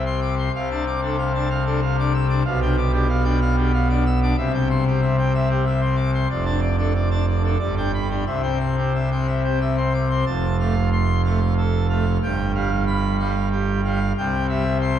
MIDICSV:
0, 0, Header, 1, 2, 480
1, 0, Start_track
1, 0, Key_signature, 0, "major"
1, 0, Tempo, 642398
1, 396, Time_signature, 3, 2, 24, 8
1, 5195, Tempo, 666667
1, 7595, Tempo, 647249
1, 11085, End_track
2, 0, Start_track
2, 0, Title_t, "Pipe organ"
2, 0, Program_c, 0, 19
2, 0, Note_on_c, 0, 36, 69
2, 0, Note_on_c, 0, 48, 66
2, 44, Note_on_c, 0, 84, 60
2, 148, Note_off_c, 0, 84, 0
2, 159, Note_on_c, 0, 86, 75
2, 260, Note_off_c, 0, 86, 0
2, 287, Note_on_c, 0, 84, 64
2, 367, Note_off_c, 0, 48, 0
2, 368, Note_off_c, 0, 36, 0
2, 385, Note_off_c, 0, 84, 0
2, 413, Note_on_c, 0, 77, 67
2, 416, Note_on_c, 0, 36, 69
2, 416, Note_on_c, 0, 48, 78
2, 513, Note_off_c, 0, 77, 0
2, 527, Note_on_c, 0, 81, 62
2, 532, Note_on_c, 0, 62, 55
2, 630, Note_off_c, 0, 81, 0
2, 633, Note_off_c, 0, 62, 0
2, 646, Note_on_c, 0, 86, 62
2, 749, Note_off_c, 0, 86, 0
2, 771, Note_on_c, 0, 62, 56
2, 772, Note_on_c, 0, 69, 60
2, 872, Note_off_c, 0, 62, 0
2, 872, Note_off_c, 0, 69, 0
2, 884, Note_on_c, 0, 77, 67
2, 987, Note_off_c, 0, 77, 0
2, 1006, Note_on_c, 0, 81, 67
2, 1008, Note_on_c, 0, 62, 63
2, 1109, Note_off_c, 0, 81, 0
2, 1110, Note_off_c, 0, 62, 0
2, 1121, Note_on_c, 0, 77, 70
2, 1226, Note_off_c, 0, 77, 0
2, 1243, Note_on_c, 0, 69, 66
2, 1245, Note_on_c, 0, 62, 62
2, 1347, Note_off_c, 0, 69, 0
2, 1348, Note_off_c, 0, 62, 0
2, 1359, Note_on_c, 0, 77, 69
2, 1465, Note_off_c, 0, 77, 0
2, 1486, Note_on_c, 0, 62, 63
2, 1489, Note_on_c, 0, 86, 68
2, 1588, Note_off_c, 0, 62, 0
2, 1590, Note_off_c, 0, 86, 0
2, 1597, Note_on_c, 0, 88, 78
2, 1698, Note_off_c, 0, 88, 0
2, 1713, Note_on_c, 0, 86, 61
2, 1716, Note_on_c, 0, 62, 63
2, 1814, Note_off_c, 0, 36, 0
2, 1814, Note_off_c, 0, 48, 0
2, 1815, Note_off_c, 0, 86, 0
2, 1816, Note_off_c, 0, 62, 0
2, 1833, Note_on_c, 0, 77, 66
2, 1834, Note_on_c, 0, 35, 75
2, 1836, Note_on_c, 0, 47, 82
2, 1940, Note_off_c, 0, 77, 0
2, 1953, Note_on_c, 0, 62, 58
2, 1954, Note_on_c, 0, 79, 68
2, 2060, Note_off_c, 0, 62, 0
2, 2060, Note_off_c, 0, 79, 0
2, 2070, Note_on_c, 0, 86, 70
2, 2178, Note_off_c, 0, 86, 0
2, 2186, Note_on_c, 0, 62, 60
2, 2188, Note_on_c, 0, 67, 59
2, 2296, Note_off_c, 0, 62, 0
2, 2297, Note_off_c, 0, 67, 0
2, 2309, Note_on_c, 0, 77, 71
2, 2418, Note_off_c, 0, 77, 0
2, 2420, Note_on_c, 0, 79, 70
2, 2425, Note_on_c, 0, 62, 62
2, 2533, Note_off_c, 0, 79, 0
2, 2535, Note_off_c, 0, 62, 0
2, 2548, Note_on_c, 0, 77, 74
2, 2657, Note_off_c, 0, 77, 0
2, 2667, Note_on_c, 0, 67, 67
2, 2669, Note_on_c, 0, 62, 61
2, 2777, Note_off_c, 0, 67, 0
2, 2778, Note_off_c, 0, 62, 0
2, 2795, Note_on_c, 0, 77, 75
2, 2901, Note_off_c, 0, 77, 0
2, 2910, Note_on_c, 0, 86, 71
2, 2912, Note_on_c, 0, 62, 60
2, 3018, Note_off_c, 0, 86, 0
2, 3019, Note_off_c, 0, 62, 0
2, 3035, Note_on_c, 0, 88, 75
2, 3135, Note_off_c, 0, 88, 0
2, 3157, Note_on_c, 0, 62, 59
2, 3158, Note_on_c, 0, 86, 65
2, 3241, Note_off_c, 0, 35, 0
2, 3242, Note_off_c, 0, 47, 0
2, 3256, Note_off_c, 0, 62, 0
2, 3257, Note_off_c, 0, 86, 0
2, 3271, Note_on_c, 0, 48, 71
2, 3272, Note_on_c, 0, 76, 61
2, 3274, Note_on_c, 0, 36, 77
2, 3378, Note_off_c, 0, 76, 0
2, 3389, Note_on_c, 0, 79, 65
2, 3496, Note_off_c, 0, 79, 0
2, 3512, Note_on_c, 0, 84, 73
2, 3617, Note_off_c, 0, 84, 0
2, 3634, Note_on_c, 0, 67, 59
2, 3738, Note_off_c, 0, 67, 0
2, 3748, Note_on_c, 0, 76, 63
2, 3855, Note_off_c, 0, 76, 0
2, 3873, Note_on_c, 0, 79, 65
2, 3978, Note_off_c, 0, 79, 0
2, 3992, Note_on_c, 0, 76, 66
2, 4098, Note_off_c, 0, 76, 0
2, 4113, Note_on_c, 0, 67, 60
2, 4219, Note_off_c, 0, 67, 0
2, 4230, Note_on_c, 0, 76, 64
2, 4337, Note_off_c, 0, 76, 0
2, 4343, Note_on_c, 0, 84, 60
2, 4453, Note_off_c, 0, 84, 0
2, 4455, Note_on_c, 0, 86, 79
2, 4564, Note_off_c, 0, 86, 0
2, 4590, Note_on_c, 0, 84, 59
2, 4682, Note_off_c, 0, 48, 0
2, 4683, Note_off_c, 0, 36, 0
2, 4693, Note_off_c, 0, 84, 0
2, 4705, Note_on_c, 0, 41, 67
2, 4706, Note_on_c, 0, 74, 60
2, 4707, Note_on_c, 0, 29, 64
2, 4815, Note_off_c, 0, 74, 0
2, 4819, Note_on_c, 0, 81, 79
2, 4820, Note_on_c, 0, 62, 52
2, 4931, Note_off_c, 0, 81, 0
2, 4932, Note_off_c, 0, 62, 0
2, 4937, Note_on_c, 0, 74, 62
2, 5051, Note_off_c, 0, 74, 0
2, 5069, Note_on_c, 0, 62, 54
2, 5070, Note_on_c, 0, 69, 51
2, 5178, Note_off_c, 0, 62, 0
2, 5179, Note_off_c, 0, 69, 0
2, 5186, Note_on_c, 0, 74, 53
2, 5293, Note_off_c, 0, 74, 0
2, 5305, Note_on_c, 0, 62, 54
2, 5305, Note_on_c, 0, 81, 62
2, 5411, Note_off_c, 0, 62, 0
2, 5412, Note_off_c, 0, 81, 0
2, 5426, Note_on_c, 0, 74, 60
2, 5531, Note_off_c, 0, 74, 0
2, 5544, Note_on_c, 0, 62, 48
2, 5545, Note_on_c, 0, 69, 55
2, 5631, Note_off_c, 0, 41, 0
2, 5632, Note_off_c, 0, 29, 0
2, 5645, Note_off_c, 0, 62, 0
2, 5645, Note_off_c, 0, 69, 0
2, 5656, Note_on_c, 0, 74, 58
2, 5659, Note_on_c, 0, 31, 66
2, 5660, Note_on_c, 0, 43, 68
2, 5765, Note_off_c, 0, 74, 0
2, 5777, Note_on_c, 0, 62, 54
2, 5781, Note_on_c, 0, 79, 55
2, 5886, Note_off_c, 0, 62, 0
2, 5888, Note_off_c, 0, 79, 0
2, 5904, Note_on_c, 0, 83, 75
2, 6010, Note_off_c, 0, 83, 0
2, 6020, Note_on_c, 0, 62, 47
2, 6020, Note_on_c, 0, 67, 49
2, 6124, Note_off_c, 0, 62, 0
2, 6124, Note_off_c, 0, 67, 0
2, 6127, Note_off_c, 0, 31, 0
2, 6127, Note_off_c, 0, 43, 0
2, 6135, Note_on_c, 0, 36, 55
2, 6137, Note_on_c, 0, 76, 50
2, 6138, Note_on_c, 0, 48, 59
2, 6248, Note_off_c, 0, 76, 0
2, 6256, Note_on_c, 0, 79, 49
2, 6258, Note_on_c, 0, 60, 43
2, 6368, Note_off_c, 0, 79, 0
2, 6369, Note_off_c, 0, 60, 0
2, 6379, Note_on_c, 0, 84, 52
2, 6490, Note_off_c, 0, 84, 0
2, 6509, Note_on_c, 0, 60, 48
2, 6509, Note_on_c, 0, 67, 43
2, 6616, Note_off_c, 0, 60, 0
2, 6616, Note_off_c, 0, 67, 0
2, 6631, Note_on_c, 0, 76, 47
2, 6737, Note_off_c, 0, 76, 0
2, 6752, Note_on_c, 0, 79, 52
2, 6753, Note_on_c, 0, 60, 45
2, 6858, Note_off_c, 0, 79, 0
2, 6859, Note_off_c, 0, 60, 0
2, 6867, Note_on_c, 0, 76, 55
2, 6976, Note_off_c, 0, 76, 0
2, 6984, Note_on_c, 0, 67, 48
2, 6985, Note_on_c, 0, 60, 50
2, 7095, Note_off_c, 0, 60, 0
2, 7095, Note_off_c, 0, 67, 0
2, 7109, Note_on_c, 0, 76, 51
2, 7218, Note_off_c, 0, 76, 0
2, 7222, Note_on_c, 0, 60, 44
2, 7226, Note_on_c, 0, 84, 50
2, 7335, Note_off_c, 0, 60, 0
2, 7337, Note_off_c, 0, 84, 0
2, 7342, Note_on_c, 0, 86, 60
2, 7449, Note_off_c, 0, 86, 0
2, 7460, Note_on_c, 0, 84, 48
2, 7462, Note_on_c, 0, 60, 45
2, 7560, Note_off_c, 0, 36, 0
2, 7562, Note_off_c, 0, 48, 0
2, 7567, Note_off_c, 0, 84, 0
2, 7568, Note_off_c, 0, 60, 0
2, 7574, Note_on_c, 0, 29, 65
2, 7575, Note_on_c, 0, 41, 59
2, 7575, Note_on_c, 0, 81, 58
2, 7799, Note_off_c, 0, 81, 0
2, 7826, Note_on_c, 0, 77, 54
2, 7827, Note_on_c, 0, 57, 51
2, 7938, Note_off_c, 0, 57, 0
2, 8046, Note_off_c, 0, 77, 0
2, 8067, Note_on_c, 0, 84, 78
2, 8286, Note_off_c, 0, 84, 0
2, 8305, Note_on_c, 0, 77, 63
2, 8310, Note_on_c, 0, 57, 55
2, 8421, Note_off_c, 0, 57, 0
2, 8525, Note_off_c, 0, 77, 0
2, 8550, Note_on_c, 0, 69, 58
2, 8768, Note_off_c, 0, 69, 0
2, 8785, Note_on_c, 0, 77, 57
2, 8789, Note_on_c, 0, 57, 55
2, 8901, Note_off_c, 0, 57, 0
2, 8995, Note_off_c, 0, 77, 0
2, 9000, Note_off_c, 0, 29, 0
2, 9000, Note_off_c, 0, 41, 0
2, 9030, Note_on_c, 0, 43, 63
2, 9031, Note_on_c, 0, 31, 62
2, 9033, Note_on_c, 0, 79, 55
2, 9250, Note_off_c, 0, 79, 0
2, 9274, Note_on_c, 0, 55, 56
2, 9274, Note_on_c, 0, 77, 55
2, 9383, Note_off_c, 0, 55, 0
2, 9490, Note_off_c, 0, 77, 0
2, 9512, Note_on_c, 0, 83, 77
2, 9729, Note_off_c, 0, 83, 0
2, 9751, Note_on_c, 0, 77, 62
2, 9755, Note_on_c, 0, 55, 57
2, 9864, Note_off_c, 0, 55, 0
2, 9968, Note_off_c, 0, 77, 0
2, 9989, Note_on_c, 0, 67, 64
2, 10207, Note_off_c, 0, 67, 0
2, 10237, Note_on_c, 0, 55, 58
2, 10237, Note_on_c, 0, 77, 61
2, 10344, Note_off_c, 0, 55, 0
2, 10441, Note_off_c, 0, 77, 0
2, 10443, Note_off_c, 0, 31, 0
2, 10443, Note_off_c, 0, 43, 0
2, 10478, Note_on_c, 0, 36, 67
2, 10478, Note_on_c, 0, 48, 72
2, 10478, Note_on_c, 0, 79, 64
2, 10691, Note_off_c, 0, 79, 0
2, 10709, Note_on_c, 0, 76, 58
2, 10712, Note_on_c, 0, 55, 56
2, 10820, Note_off_c, 0, 55, 0
2, 10924, Note_off_c, 0, 76, 0
2, 10952, Note_on_c, 0, 84, 83
2, 11085, Note_off_c, 0, 36, 0
2, 11085, Note_off_c, 0, 48, 0
2, 11085, Note_off_c, 0, 84, 0
2, 11085, End_track
0, 0, End_of_file